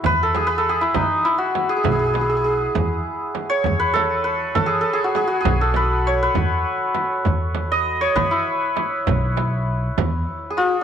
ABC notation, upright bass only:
X:1
M:6/8
L:1/8
Q:3/8=66
K:none
V:1 name="Upright bass" clef=bass
E,,3 E, z2 | B,,,3 E,, z2 | E,,3 E, z2 | B,,,3 E,, z2 |
E,,3 E, z2 | B,,,3 E,, z2 |]